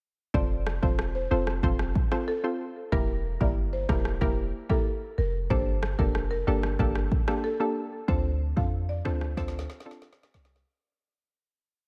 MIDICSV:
0, 0, Header, 1, 5, 480
1, 0, Start_track
1, 0, Key_signature, -1, "minor"
1, 0, Tempo, 645161
1, 255, Time_signature, 4, 2, 24, 8
1, 8833, End_track
2, 0, Start_track
2, 0, Title_t, "Marimba"
2, 0, Program_c, 0, 12
2, 254, Note_on_c, 0, 74, 93
2, 441, Note_off_c, 0, 74, 0
2, 617, Note_on_c, 0, 72, 62
2, 709, Note_off_c, 0, 72, 0
2, 856, Note_on_c, 0, 72, 75
2, 949, Note_off_c, 0, 72, 0
2, 976, Note_on_c, 0, 72, 73
2, 1069, Note_off_c, 0, 72, 0
2, 1695, Note_on_c, 0, 69, 82
2, 2033, Note_off_c, 0, 69, 0
2, 2175, Note_on_c, 0, 70, 103
2, 2361, Note_off_c, 0, 70, 0
2, 2536, Note_on_c, 0, 74, 76
2, 2629, Note_off_c, 0, 74, 0
2, 2775, Note_on_c, 0, 72, 71
2, 2868, Note_off_c, 0, 72, 0
2, 2895, Note_on_c, 0, 70, 74
2, 2988, Note_off_c, 0, 70, 0
2, 3135, Note_on_c, 0, 70, 79
2, 3228, Note_off_c, 0, 70, 0
2, 3494, Note_on_c, 0, 69, 87
2, 3587, Note_off_c, 0, 69, 0
2, 3854, Note_on_c, 0, 70, 78
2, 3948, Note_off_c, 0, 70, 0
2, 4095, Note_on_c, 0, 72, 107
2, 4282, Note_off_c, 0, 72, 0
2, 4455, Note_on_c, 0, 70, 77
2, 4548, Note_off_c, 0, 70, 0
2, 4693, Note_on_c, 0, 70, 87
2, 4787, Note_off_c, 0, 70, 0
2, 4815, Note_on_c, 0, 70, 69
2, 4908, Note_off_c, 0, 70, 0
2, 5535, Note_on_c, 0, 69, 79
2, 5873, Note_off_c, 0, 69, 0
2, 6015, Note_on_c, 0, 72, 94
2, 6201, Note_off_c, 0, 72, 0
2, 6375, Note_on_c, 0, 77, 78
2, 6468, Note_off_c, 0, 77, 0
2, 6615, Note_on_c, 0, 74, 75
2, 6708, Note_off_c, 0, 74, 0
2, 6734, Note_on_c, 0, 72, 74
2, 6828, Note_off_c, 0, 72, 0
2, 6974, Note_on_c, 0, 72, 90
2, 7068, Note_off_c, 0, 72, 0
2, 7333, Note_on_c, 0, 74, 69
2, 7427, Note_off_c, 0, 74, 0
2, 8833, End_track
3, 0, Start_track
3, 0, Title_t, "Synth pluck"
3, 0, Program_c, 1, 84
3, 253, Note_on_c, 1, 60, 89
3, 255, Note_on_c, 1, 65, 79
3, 256, Note_on_c, 1, 69, 83
3, 258, Note_on_c, 1, 72, 96
3, 415, Note_off_c, 1, 60, 0
3, 416, Note_off_c, 1, 65, 0
3, 417, Note_off_c, 1, 69, 0
3, 417, Note_off_c, 1, 72, 0
3, 613, Note_on_c, 1, 60, 72
3, 615, Note_on_c, 1, 65, 66
3, 616, Note_on_c, 1, 69, 68
3, 617, Note_on_c, 1, 72, 80
3, 945, Note_off_c, 1, 60, 0
3, 946, Note_off_c, 1, 65, 0
3, 947, Note_off_c, 1, 69, 0
3, 947, Note_off_c, 1, 72, 0
3, 973, Note_on_c, 1, 60, 75
3, 975, Note_on_c, 1, 65, 70
3, 976, Note_on_c, 1, 69, 73
3, 978, Note_on_c, 1, 72, 87
3, 1195, Note_off_c, 1, 60, 0
3, 1196, Note_off_c, 1, 65, 0
3, 1196, Note_off_c, 1, 69, 0
3, 1197, Note_off_c, 1, 72, 0
3, 1213, Note_on_c, 1, 60, 97
3, 1215, Note_on_c, 1, 65, 85
3, 1216, Note_on_c, 1, 69, 86
3, 1218, Note_on_c, 1, 72, 104
3, 1545, Note_off_c, 1, 60, 0
3, 1546, Note_off_c, 1, 65, 0
3, 1547, Note_off_c, 1, 69, 0
3, 1548, Note_off_c, 1, 72, 0
3, 1574, Note_on_c, 1, 60, 79
3, 1575, Note_on_c, 1, 65, 72
3, 1577, Note_on_c, 1, 69, 73
3, 1578, Note_on_c, 1, 72, 87
3, 1735, Note_off_c, 1, 60, 0
3, 1736, Note_off_c, 1, 65, 0
3, 1737, Note_off_c, 1, 69, 0
3, 1738, Note_off_c, 1, 72, 0
3, 1813, Note_on_c, 1, 60, 68
3, 1814, Note_on_c, 1, 65, 66
3, 1816, Note_on_c, 1, 69, 66
3, 1817, Note_on_c, 1, 72, 78
3, 1975, Note_off_c, 1, 60, 0
3, 1975, Note_off_c, 1, 65, 0
3, 1976, Note_off_c, 1, 69, 0
3, 1977, Note_off_c, 1, 72, 0
3, 2173, Note_on_c, 1, 58, 89
3, 2175, Note_on_c, 1, 64, 86
3, 2176, Note_on_c, 1, 67, 82
3, 2178, Note_on_c, 1, 70, 100
3, 2335, Note_off_c, 1, 58, 0
3, 2336, Note_off_c, 1, 64, 0
3, 2337, Note_off_c, 1, 67, 0
3, 2337, Note_off_c, 1, 70, 0
3, 2533, Note_on_c, 1, 58, 74
3, 2535, Note_on_c, 1, 64, 69
3, 2536, Note_on_c, 1, 67, 65
3, 2538, Note_on_c, 1, 70, 82
3, 2865, Note_off_c, 1, 58, 0
3, 2866, Note_off_c, 1, 64, 0
3, 2867, Note_off_c, 1, 67, 0
3, 2868, Note_off_c, 1, 70, 0
3, 2893, Note_on_c, 1, 58, 77
3, 2895, Note_on_c, 1, 64, 71
3, 2896, Note_on_c, 1, 67, 70
3, 2898, Note_on_c, 1, 70, 86
3, 3115, Note_off_c, 1, 58, 0
3, 3116, Note_off_c, 1, 64, 0
3, 3116, Note_off_c, 1, 67, 0
3, 3117, Note_off_c, 1, 70, 0
3, 3132, Note_on_c, 1, 58, 97
3, 3133, Note_on_c, 1, 64, 84
3, 3136, Note_on_c, 1, 67, 92
3, 3137, Note_on_c, 1, 70, 103
3, 3465, Note_off_c, 1, 58, 0
3, 3465, Note_off_c, 1, 64, 0
3, 3466, Note_off_c, 1, 67, 0
3, 3467, Note_off_c, 1, 70, 0
3, 3492, Note_on_c, 1, 58, 74
3, 3494, Note_on_c, 1, 64, 73
3, 3495, Note_on_c, 1, 67, 70
3, 3497, Note_on_c, 1, 70, 86
3, 3655, Note_off_c, 1, 58, 0
3, 3655, Note_off_c, 1, 64, 0
3, 3656, Note_off_c, 1, 67, 0
3, 3657, Note_off_c, 1, 70, 0
3, 4093, Note_on_c, 1, 58, 92
3, 4095, Note_on_c, 1, 62, 84
3, 4096, Note_on_c, 1, 67, 82
3, 4098, Note_on_c, 1, 69, 96
3, 4255, Note_off_c, 1, 58, 0
3, 4256, Note_off_c, 1, 62, 0
3, 4257, Note_off_c, 1, 67, 0
3, 4257, Note_off_c, 1, 69, 0
3, 4454, Note_on_c, 1, 58, 75
3, 4455, Note_on_c, 1, 62, 68
3, 4457, Note_on_c, 1, 67, 68
3, 4458, Note_on_c, 1, 69, 82
3, 4786, Note_off_c, 1, 58, 0
3, 4786, Note_off_c, 1, 62, 0
3, 4787, Note_off_c, 1, 67, 0
3, 4788, Note_off_c, 1, 69, 0
3, 4814, Note_on_c, 1, 58, 80
3, 4815, Note_on_c, 1, 62, 73
3, 4817, Note_on_c, 1, 67, 73
3, 4818, Note_on_c, 1, 69, 87
3, 5035, Note_off_c, 1, 58, 0
3, 5036, Note_off_c, 1, 62, 0
3, 5037, Note_off_c, 1, 67, 0
3, 5037, Note_off_c, 1, 69, 0
3, 5054, Note_on_c, 1, 58, 97
3, 5055, Note_on_c, 1, 62, 89
3, 5057, Note_on_c, 1, 67, 89
3, 5059, Note_on_c, 1, 69, 102
3, 5385, Note_off_c, 1, 58, 0
3, 5386, Note_off_c, 1, 62, 0
3, 5387, Note_off_c, 1, 67, 0
3, 5388, Note_off_c, 1, 69, 0
3, 5413, Note_on_c, 1, 58, 82
3, 5415, Note_on_c, 1, 62, 71
3, 5416, Note_on_c, 1, 67, 70
3, 5418, Note_on_c, 1, 69, 85
3, 5575, Note_off_c, 1, 58, 0
3, 5576, Note_off_c, 1, 62, 0
3, 5576, Note_off_c, 1, 67, 0
3, 5577, Note_off_c, 1, 69, 0
3, 5653, Note_on_c, 1, 58, 73
3, 5655, Note_on_c, 1, 62, 65
3, 5656, Note_on_c, 1, 67, 66
3, 5658, Note_on_c, 1, 69, 81
3, 5815, Note_off_c, 1, 58, 0
3, 5816, Note_off_c, 1, 62, 0
3, 5816, Note_off_c, 1, 67, 0
3, 5817, Note_off_c, 1, 69, 0
3, 6012, Note_on_c, 1, 60, 91
3, 6014, Note_on_c, 1, 62, 84
3, 6015, Note_on_c, 1, 65, 83
3, 6017, Note_on_c, 1, 69, 99
3, 6175, Note_off_c, 1, 60, 0
3, 6175, Note_off_c, 1, 62, 0
3, 6176, Note_off_c, 1, 65, 0
3, 6177, Note_off_c, 1, 69, 0
3, 6372, Note_on_c, 1, 60, 76
3, 6373, Note_on_c, 1, 62, 69
3, 6375, Note_on_c, 1, 65, 69
3, 6376, Note_on_c, 1, 69, 82
3, 6705, Note_off_c, 1, 60, 0
3, 6705, Note_off_c, 1, 62, 0
3, 6706, Note_off_c, 1, 65, 0
3, 6707, Note_off_c, 1, 69, 0
3, 6732, Note_on_c, 1, 60, 78
3, 6734, Note_on_c, 1, 62, 75
3, 6735, Note_on_c, 1, 65, 73
3, 6737, Note_on_c, 1, 69, 84
3, 6954, Note_off_c, 1, 60, 0
3, 6955, Note_off_c, 1, 62, 0
3, 6956, Note_off_c, 1, 65, 0
3, 6956, Note_off_c, 1, 69, 0
3, 6972, Note_on_c, 1, 60, 96
3, 6974, Note_on_c, 1, 62, 90
3, 6975, Note_on_c, 1, 65, 88
3, 6976, Note_on_c, 1, 69, 109
3, 7305, Note_off_c, 1, 60, 0
3, 7305, Note_off_c, 1, 62, 0
3, 7306, Note_off_c, 1, 65, 0
3, 7307, Note_off_c, 1, 69, 0
3, 7332, Note_on_c, 1, 60, 78
3, 7333, Note_on_c, 1, 62, 72
3, 7335, Note_on_c, 1, 65, 71
3, 7336, Note_on_c, 1, 69, 87
3, 7494, Note_off_c, 1, 60, 0
3, 7495, Note_off_c, 1, 62, 0
3, 7496, Note_off_c, 1, 65, 0
3, 7497, Note_off_c, 1, 69, 0
3, 8833, End_track
4, 0, Start_track
4, 0, Title_t, "808-style bass"
4, 0, Program_c, 2, 38
4, 255, Note_on_c, 2, 29, 108
4, 585, Note_off_c, 2, 29, 0
4, 615, Note_on_c, 2, 28, 84
4, 945, Note_off_c, 2, 28, 0
4, 976, Note_on_c, 2, 29, 86
4, 1195, Note_off_c, 2, 29, 0
4, 1213, Note_on_c, 2, 29, 107
4, 1434, Note_off_c, 2, 29, 0
4, 2175, Note_on_c, 2, 28, 111
4, 2505, Note_off_c, 2, 28, 0
4, 2536, Note_on_c, 2, 31, 86
4, 2865, Note_off_c, 2, 31, 0
4, 2895, Note_on_c, 2, 28, 91
4, 3114, Note_off_c, 2, 28, 0
4, 3134, Note_on_c, 2, 28, 104
4, 3354, Note_off_c, 2, 28, 0
4, 3855, Note_on_c, 2, 29, 94
4, 4075, Note_off_c, 2, 29, 0
4, 4095, Note_on_c, 2, 31, 109
4, 4425, Note_off_c, 2, 31, 0
4, 4455, Note_on_c, 2, 29, 89
4, 4785, Note_off_c, 2, 29, 0
4, 4816, Note_on_c, 2, 31, 83
4, 5035, Note_off_c, 2, 31, 0
4, 5053, Note_on_c, 2, 31, 98
4, 5273, Note_off_c, 2, 31, 0
4, 6014, Note_on_c, 2, 38, 114
4, 6345, Note_off_c, 2, 38, 0
4, 6375, Note_on_c, 2, 41, 89
4, 6705, Note_off_c, 2, 41, 0
4, 6736, Note_on_c, 2, 38, 92
4, 6955, Note_off_c, 2, 38, 0
4, 6972, Note_on_c, 2, 38, 99
4, 7193, Note_off_c, 2, 38, 0
4, 7696, Note_on_c, 2, 36, 86
4, 7915, Note_off_c, 2, 36, 0
4, 8833, End_track
5, 0, Start_track
5, 0, Title_t, "Drums"
5, 255, Note_on_c, 9, 36, 113
5, 329, Note_off_c, 9, 36, 0
5, 495, Note_on_c, 9, 37, 98
5, 569, Note_off_c, 9, 37, 0
5, 615, Note_on_c, 9, 36, 87
5, 690, Note_off_c, 9, 36, 0
5, 734, Note_on_c, 9, 37, 96
5, 809, Note_off_c, 9, 37, 0
5, 1094, Note_on_c, 9, 37, 84
5, 1169, Note_off_c, 9, 37, 0
5, 1213, Note_on_c, 9, 36, 84
5, 1288, Note_off_c, 9, 36, 0
5, 1334, Note_on_c, 9, 37, 92
5, 1408, Note_off_c, 9, 37, 0
5, 1454, Note_on_c, 9, 36, 91
5, 1529, Note_off_c, 9, 36, 0
5, 1574, Note_on_c, 9, 37, 93
5, 1649, Note_off_c, 9, 37, 0
5, 2175, Note_on_c, 9, 36, 106
5, 2249, Note_off_c, 9, 36, 0
5, 2535, Note_on_c, 9, 36, 92
5, 2609, Note_off_c, 9, 36, 0
5, 2895, Note_on_c, 9, 36, 94
5, 2895, Note_on_c, 9, 37, 101
5, 2969, Note_off_c, 9, 36, 0
5, 2970, Note_off_c, 9, 37, 0
5, 3015, Note_on_c, 9, 37, 86
5, 3089, Note_off_c, 9, 37, 0
5, 3133, Note_on_c, 9, 36, 88
5, 3208, Note_off_c, 9, 36, 0
5, 3494, Note_on_c, 9, 36, 90
5, 3568, Note_off_c, 9, 36, 0
5, 4095, Note_on_c, 9, 36, 110
5, 4169, Note_off_c, 9, 36, 0
5, 4335, Note_on_c, 9, 37, 100
5, 4409, Note_off_c, 9, 37, 0
5, 4455, Note_on_c, 9, 36, 87
5, 4530, Note_off_c, 9, 36, 0
5, 4575, Note_on_c, 9, 37, 91
5, 4649, Note_off_c, 9, 37, 0
5, 4935, Note_on_c, 9, 37, 89
5, 5010, Note_off_c, 9, 37, 0
5, 5053, Note_on_c, 9, 36, 86
5, 5128, Note_off_c, 9, 36, 0
5, 5174, Note_on_c, 9, 37, 87
5, 5248, Note_off_c, 9, 37, 0
5, 5294, Note_on_c, 9, 36, 93
5, 5369, Note_off_c, 9, 36, 0
5, 5414, Note_on_c, 9, 37, 96
5, 5489, Note_off_c, 9, 37, 0
5, 6015, Note_on_c, 9, 36, 107
5, 6089, Note_off_c, 9, 36, 0
5, 6375, Note_on_c, 9, 36, 91
5, 6449, Note_off_c, 9, 36, 0
5, 6735, Note_on_c, 9, 37, 99
5, 6810, Note_off_c, 9, 37, 0
5, 6855, Note_on_c, 9, 37, 82
5, 6929, Note_off_c, 9, 37, 0
5, 6973, Note_on_c, 9, 36, 89
5, 6975, Note_on_c, 9, 38, 54
5, 7047, Note_off_c, 9, 36, 0
5, 7049, Note_off_c, 9, 38, 0
5, 7054, Note_on_c, 9, 38, 51
5, 7129, Note_off_c, 9, 38, 0
5, 7134, Note_on_c, 9, 38, 60
5, 7208, Note_off_c, 9, 38, 0
5, 7214, Note_on_c, 9, 38, 58
5, 7289, Note_off_c, 9, 38, 0
5, 7294, Note_on_c, 9, 38, 73
5, 7369, Note_off_c, 9, 38, 0
5, 7374, Note_on_c, 9, 38, 64
5, 7448, Note_off_c, 9, 38, 0
5, 7454, Note_on_c, 9, 38, 80
5, 7528, Note_off_c, 9, 38, 0
5, 7534, Note_on_c, 9, 38, 72
5, 7608, Note_off_c, 9, 38, 0
5, 7614, Note_on_c, 9, 38, 92
5, 7688, Note_off_c, 9, 38, 0
5, 7694, Note_on_c, 9, 38, 85
5, 7768, Note_off_c, 9, 38, 0
5, 7774, Note_on_c, 9, 38, 102
5, 7849, Note_off_c, 9, 38, 0
5, 7855, Note_on_c, 9, 38, 84
5, 7929, Note_off_c, 9, 38, 0
5, 8833, End_track
0, 0, End_of_file